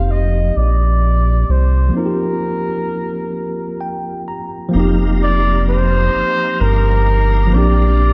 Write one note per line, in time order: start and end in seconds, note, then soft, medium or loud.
0.00 0.51 F1 loud
0.00 1.87 F3 medium
0.00 1.88 A#3 medium
0.00 1.90 C4 soft
0.00 1.91 D#4 medium
0.00 1.96 G4 medium
0.00 0.13 F5 medium
0.11 0.58 D#5 medium
0.57 1.45 A#1 medium
0.57 1.53 D5 medium
1.49 1.91 C2 medium
1.49 1.96 C5 medium
1.89 4.66 F3 medium
1.89 4.67 A#3 soft
1.94 4.69 C4 medium
1.94 4.70 D#4 soft
1.94 4.24 A#4 medium
1.99 2.03 F4 soft
2.06 4.75 G4 medium
3.81 4.24 G5 medium
4.28 4.71 A#5 medium
4.69 7.46 F3 medium
4.69 7.47 A#3 medium
4.73 6.09 F1 loud
4.73 7.49 C4 medium
4.73 7.50 D#4 medium
4.73 8.13 G4 medium
4.73 8.13 F5 medium
4.73 8.13 A#5 medium
4.80 7.51 G4 medium
5.23 5.65 D5 loud
5.70 6.63 C5 loud
6.15 6.23 G1 soft
6.60 7.55 G1 medium
6.60 7.56 A#4 loud
7.47 8.13 F3 medium
7.47 8.13 A#3 medium
7.53 8.13 A#1 loud
7.53 8.13 C4 medium
7.53 8.13 D4 medium
7.53 8.13 D5 medium
7.58 8.13 G4 medium